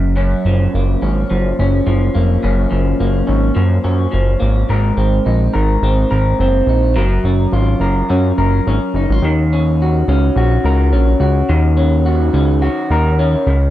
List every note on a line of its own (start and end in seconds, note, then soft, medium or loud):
0.00 0.34 F#1 medium
0.00 0.15 F#2 medium
0.00 0.46 F#3 medium
0.00 0.75 A#3 soft
0.16 2.42 F#2 medium
0.16 1.01 C#4 medium
0.45 0.68 F#1 medium
0.45 1.29 F3 medium
0.74 0.96 F#1 medium
0.74 2.14 A#3 medium
1.02 1.24 G#1 medium
1.02 1.58 C#4 medium
1.30 1.53 F#1 medium
1.30 1.86 F3 medium
1.59 1.81 F#1 medium
1.59 2.43 C#4 medium
1.87 2.09 F#1 medium
1.87 2.69 F3 medium
2.15 2.38 F1 medium
2.15 3.00 A#3 medium
2.43 2.66 F#1 loud
2.43 4.69 F#2 medium
2.43 3.26 C#4 medium
2.71 2.94 F#1 loud
2.71 3.54 F3 soft
3.00 3.22 F#1 medium
3.00 4.39 A#3 medium
3.27 3.51 G#1 loud
3.27 3.83 C#4 medium
3.55 3.79 F#2 loud
3.55 4.10 F3 medium
3.84 4.07 F#2 medium
3.84 4.76 C#4 medium
4.12 4.36 F#1 medium
4.12 4.75 F3 medium
4.40 4.64 G#1 medium
4.40 4.97 A#3 medium
4.69 4.92 G#1 medium
4.69 6.96 G#2 medium
4.69 5.53 A#4 medium
4.97 5.20 G#1 medium
4.97 5.82 C4 soft
5.26 5.49 A#1 medium
5.26 6.68 D#4 soft
5.54 5.77 G#1 loud
5.54 6.10 A#4 medium
5.82 6.05 G#1 medium
5.82 6.40 C4 medium
6.11 6.34 G#1 medium
6.11 6.96 A#4 medium
6.39 6.62 F#1 medium
6.39 7.03 C4 medium
6.66 6.98 A#1 medium
6.66 7.03 D#4 soft
6.96 7.19 F#1 loud
6.96 9.24 F#3 medium
6.96 7.81 A#4 medium
7.24 7.47 F#1 medium
7.24 8.09 C#4 medium
7.52 7.75 G#1 medium
7.52 8.95 F4 medium
7.80 8.03 F#1 medium
7.80 8.38 A#4 medium
8.10 8.32 F#2 loud
8.10 8.67 C#4 medium
8.38 8.60 F#1 medium
8.38 10.65 A#4 medium
8.67 8.79 G#1 medium
8.67 9.53 C#4 medium
8.94 9.07 F#1 medium
8.94 9.12 D#4 soft
9.10 9.20 G#1 medium
9.10 9.30 F4 soft
9.22 10.03 D#2 loud
9.22 11.48 D#3 medium
9.53 10.09 C#4 soft
9.82 10.36 F#4 soft
10.08 10.30 C#2 medium
10.08 10.92 C#4 medium
10.36 10.58 A#1 medium
10.36 11.19 F#4 medium
10.64 10.94 C#2 medium
10.64 12.90 A#4 medium
10.92 11.15 A#1 loud
10.92 11.77 C#4 medium
11.20 11.43 C#2 medium
11.20 12.05 F#4 medium
11.49 12.30 D#2 loud
11.49 13.54 D#3 medium
11.77 12.34 C#4 medium
12.06 12.61 F#4 medium
12.33 12.69 C#2 loud
12.33 13.19 C#4 medium
12.62 13.53 F#4 medium
12.90 13.36 D#2 medium
12.90 13.54 A#4 medium
13.19 13.70 C#4 medium
13.47 13.70 C#2 medium
13.47 13.70 C#3 medium